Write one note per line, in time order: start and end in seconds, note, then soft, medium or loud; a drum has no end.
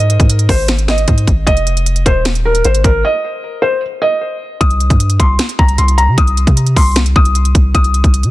0.00 0.18 G#2 loud
0.00 0.46 D#5 medium
0.10 closed hi-hat medium
0.20 0.48 G#2 loud
0.20 kick loud
0.20 closed hi-hat medium
0.30 closed hi-hat medium
0.39 closed hi-hat medium
0.49 1.05 G#1 loud
0.49 0.67 C5 medium
0.49 kick medium
0.49 open hi-hat medium
0.68 snare loud
0.68 closed hi-hat medium
0.78 closed hi-hat medium
0.88 1.44 D#5 medium
0.88 snare loud
0.98 closed hi-hat medium
1.08 1.27 G#2 loud
1.08 kick medium
1.08 closed hi-hat medium
1.18 closed hi-hat medium
1.27 1.46 G#1 loud
1.27 kick loud
1.27 closed hi-hat medium
1.47 2.04 F1 loud
1.47 2.02 D#5 loud
1.47 kick loud
1.47 closed hi-hat medium
1.57 closed hi-hat medium
1.67 closed hi-hat medium
1.77 closed hi-hat medium
1.86 closed hi-hat medium
1.96 closed hi-hat medium
2.06 2.62 D#1 loud
2.06 2.24 C5 medium
2.06 kick medium
2.06 closed hi-hat medium
2.25 snare loud
2.25 closed hi-hat medium
2.35 closed hi-hat medium
2.45 2.63 A#4 medium
2.55 closed hi-hat medium
2.64 2.84 G#1 loud
2.64 2.83 C5 medium
2.64 closed hi-hat medium
2.75 closed hi-hat medium
2.84 3.03 G#1 loud
2.84 3.02 A#4 medium
2.84 kick loud
2.84 closed hi-hat medium
3.05 3.60 D#5 medium
3.62 3.80 C5 medium
4.02 4.57 D#5 medium
4.61 4.89 C2 loud
4.61 5.16 D#6 loud
4.61 kick loud
4.61 closed hi-hat medium
4.70 closed hi-hat medium
4.80 closed hi-hat medium
4.90 5.18 G2 loud
4.90 kick loud
4.90 closed hi-hat medium
5.00 closed hi-hat medium
5.10 closed hi-hat medium
5.20 5.38 C2 loud
5.20 5.38 C6 medium
5.20 kick medium
5.20 closed hi-hat medium
5.39 snare loud
5.39 closed hi-hat loud
5.49 closed hi-hat medium
5.59 5.78 C2 loud
5.59 5.77 A#5 medium
5.59 kick loud
5.68 closed hi-hat medium
5.78 6.09 C2 loud
5.78 5.96 C6 medium
5.78 closed hi-hat medium
5.88 closed hi-hat medium
5.98 6.16 A#5 medium
5.98 closed hi-hat medium
6.08 6.17 C3 loud
6.18 6.46 C2 loud
6.18 6.73 D#6 medium
6.18 kick loud
6.18 closed hi-hat loud
6.27 closed hi-hat medium
6.37 closed hi-hat medium
6.47 6.75 C3 loud
6.47 kick loud
6.47 closed hi-hat medium
6.57 closed hi-hat medium
6.66 closed hi-hat medium
6.76 7.14 C2 loud
6.76 6.95 C6 medium
6.76 kick medium
6.76 open hi-hat medium
6.96 snare loud
6.96 closed hi-hat medium
7.06 closed hi-hat medium
7.16 7.53 C2 loud
7.16 7.71 D#6 medium
7.16 kick loud
7.25 closed hi-hat medium
7.35 closed hi-hat medium
7.45 closed hi-hat medium
7.55 7.74 C2 loud
7.55 kick loud
7.55 closed hi-hat medium
7.75 8.03 C2 loud
7.75 8.30 D#6 loud
7.75 kick loud
7.75 closed hi-hat medium
7.84 closed hi-hat medium
7.94 closed hi-hat medium
8.04 8.25 C2 loud
8.04 kick loud
8.04 closed hi-hat medium
8.14 closed hi-hat medium
8.23 8.31 C3 loud
8.23 closed hi-hat medium